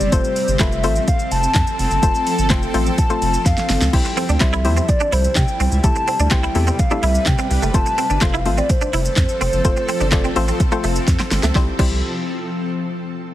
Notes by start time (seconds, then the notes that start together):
Already playing: C4 D5
0.00 F#1, shaker
0.12 F1 F3 A3 C4 F4 A4 C5, kick, closed hi-hat, shaker
0.24 shaker
0.36 open hi-hat, shaker
0.48 G1, shaker
0.59 F1 A3 C4 F4 A4 B4 E5, kick, snare, clap, closed hi-hat, shaker
0.72 shaker
0.84 A1 A3 C4 F4 A4 C5, open hi-hat, shaker
0.96 shaker
1.08 F5, kick, closed hi-hat, shaker
1.19 shaker
1.31 F1 A5, open hi-hat, shaker
1.43 shaker
1.54 F2, kick, snare, clap, closed hi-hat, shaker
1.67 shaker
1.79 F1 A5, open hi-hat, shaker
1.91 F#1, shaker
2.03 F1 A3 C4 F4 A4 C5, kick, closed hi-hat, shaker
2.15 shaker
2.27 open hi-hat, shaker
2.39 G1, shaker
2.50 F1 A3 C4 F4 A4 C5 G5, kick, snare, clap, closed hi-hat, shaker
2.63 shaker
2.74 A1 A3 C4 F4 A4 C5, open hi-hat, shaker
2.86 shaker
2.98 A5, kick, closed hi-hat, shaker
3.10 A3 C4 F4 A4 C5, shaker
3.22 F1, open hi-hat, shaker
3.34 shaker
3.46 F2 F5, kick, snare, closed hi-hat, shaker
3.57 snare, shaker
3.70 G1, snare, open hi-hat, shaker
3.81 C#2, snare, shaker
3.93 C2 C3 G3 C4 E4 G4 C5 G5, kick, crash
4.05 muted clean electric guitar stroke, shaker
4.17 C4, open hi-hat, shaker
4.29 D2 D4, shaker
4.40 C2 G3 C4 E4 G4 C5 E5, kick, snare, clap, closed hi-hat, shaker
4.53 E4, shaker
4.65 E2 G3 C4 E4 G4 C5, muted clean electric guitar stroke, open hi-hat, shaker
4.77 C4, shaker
4.89 D5, muted clean electric guitar stroke, kick, closed hi-hat, shaker
5.00 D4, shaker
5.12 C2 E4 C5, open hi-hat, shaker
5.24 shaker
5.35 C3 G5, kick, snare, clap, closed hi-hat, shaker
5.48 shaker
5.60 C2 C4, open hi-hat, shaker
5.72 C#2, shaker
5.84 C2 C3 A3 C4 E4 G4 A4 B4 A5, kick, closed hi-hat, shaker
5.96 muted clean electric guitar stroke, shaker
6.08 C4, open hi-hat, shaker
6.20 D2 D4, shaker
6.31 C2 A3 C4 E4 G4 C5 G5, kick, snare, clap, closed hi-hat, shaker
6.43 E4, shaker
6.55 E2 A3 C4 E4 G4 A4, muted clean electric guitar stroke, open hi-hat, shaker
6.67 C4, shaker
6.79 F5, muted clean electric guitar stroke, kick, closed hi-hat, shaker
6.91 A3 C4 D4 E4 G4 A4, shaker
7.03 C2 E4 E5, open hi-hat, shaker
7.15 shaker
7.26 C3 G5, kick, snare, clap, closed hi-hat, shaker
7.38 C4, shaker
7.50 C2, muted clean electric guitar stroke, open hi-hat, shaker
7.62 F#1 A3, shaker
7.74 F1 F3 A3 C4 F4 A4 C5 A5, kick, closed hi-hat, shaker
7.86 muted clean electric guitar stroke, shaker
7.98 C4, open hi-hat, shaker
8.10 G1 D4, shaker
8.21 F1 A3 C4 F4 A4 C5 F5, kick, snare, clap, closed hi-hat, shaker
8.34 E4, shaker
8.46 A1 A3 C4 F4 A4 C5, muted clean electric guitar stroke, open hi-hat, shaker
8.58 C4 D5, shaker
8.69 C5, muted clean electric guitar stroke, kick, closed hi-hat, shaker
8.81 D4, shaker
8.93 F1 E4, open hi-hat, shaker
9.05 shaker
9.16 F2, kick, snare, clap, closed hi-hat, shaker
9.29 shaker
9.41 F1 C4, open hi-hat, shaker
9.53 F#1, shaker
9.65 F1 A3 C4 F4 A4 C5, kick, closed hi-hat, shaker
9.77 muted clean electric guitar stroke, shaker
9.89 C4, open hi-hat, shaker
10.00 G1 D4, shaker
10.12 F1 A3 C4 F4 A4 D5, kick, snare, clap, closed hi-hat, shaker
10.24 C4, shaker
10.36 A1 A3 C4 F4 A4 C5, muted clean electric guitar stroke, open hi-hat, shaker
10.48 C4, shaker
10.60 muted clean electric guitar stroke, kick, closed hi-hat, shaker
10.72 A3 C4 F4 A4 C5, shaker
10.84 F1 A3, open hi-hat, shaker
10.96 shaker
11.08 F2, kick, snare, closed hi-hat, shaker
11.19 C4, snare, shaker
11.31 G1, muted clean electric guitar stroke, snare, open hi-hat, shaker
11.43 C#2 A3, snare, shaker
11.55 C2 G3 C4 E4 G4 C5, kick, snare
11.79 C2 G3 C4 E4 G4 C5, kick, crash